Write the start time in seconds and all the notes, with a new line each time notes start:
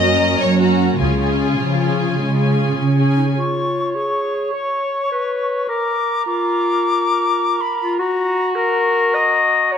Already playing: F#2 A#3 C#4 D#5
0.01 C#4 F#4 A#5
0.41 F#2 A#3 C#4 C#5
0.59 C#4 F#4 A#5
0.99 C#2 C#3 G#3 C#4 F4 G#4 G#5
1.19 C#4 G#4 G#5
1.58 C#3 F3
1.78 C#4 G#4 G#5
2.18 C#3 G#3
2.37 C#4 G#4 G#5
2.77 C#3 C#4
2.96 C#4 G#4 G#5
3.17 D#4
3.36 F4 C#5 C#6
3.95 G#4 C#6
4.53 C#5 C#6
5.12 B4
5.68 A#4 D6
6.26 F4 D6
7.61 B5
7.79 F4
7.99 F#4 A#5
8.55 A#4 A#5
9.14 D#5
9.72 C#5 A#5